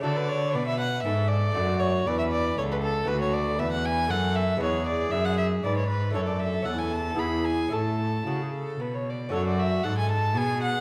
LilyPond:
<<
  \new Staff \with { instrumentName = "Violin" } { \time 3/4 \key d \lydian \tempo 4 = 117 a'16 b'16 cis''8 d''16 e''16 fis''8 e''8 d''8~ | d''8 cis''8 d''16 e''16 d''8 cis''16 b'16 a'8 | \key a \major b'16 cis''16 d''8 e''16 fis''16 gis''8 fis''8 e''8 | cis''8 d''8 e''16 fis''16 e''8 d''16 cis''16 b'8 |
cis''16 d''16 e''8 fis''16 gis''16 a''8 b''8 gis''8 | a''2 r4 | \key fis \minor cis''16 d''16 e''8 fis''16 gis''16 a''8 gis''8 fis''8 | }
  \new Staff \with { instrumentName = "Violin" } { \time 3/4 \key d \lydian d''4 b'4 a'4 | fis'4 b'4 a'4 | \key a \major fis'4 b'4 a'4 | gis'2 b'4 |
a'2 gis'4 | a'4 fis'16 gis'16 a'8 b'16 cis''16 d''8 | \key fis \minor fis'4 a'4 gis'4 | }
  \new Staff \with { instrumentName = "Lute" } { \time 3/4 \key d \lydian <a d' fis'>2. | <a d' fis'>2. | \key a \major <a b fis'>2. | <gis b b'>2. |
<a d' a'>4 <cis' e' a'>4 <b e' gis'>4 | <cis' e' a'>2. | \key fis \minor <cis' fis' a'>2. | }
  \new Staff \with { instrumentName = "Lute" } { \clef bass \time 3/4 \key d \lydian d4 b,4 gis,4 | fis,4 e,4 r4 | \key a \major d,4 e,4 fis,4 | e,4 fis,4 gis,4 |
fis,4 e,4 e,4 | a,4 cis4 b,4 | \key fis \minor fis,4 gis,4 b,4 | }
  \new Staff \with { instrumentName = "Cello" } { \clef bass \time 3/4 \key d \lydian d4 b,4 gis,4 | fis,4 e,4 cis,4 | \key a \major d,4 e,4 fis,4 | e,4 fis,4 gis,4 |
fis,4 e,4 e,4 | a,4 cis4 b,4 | \key fis \minor fis,4 gis,4 b,4 | }
>>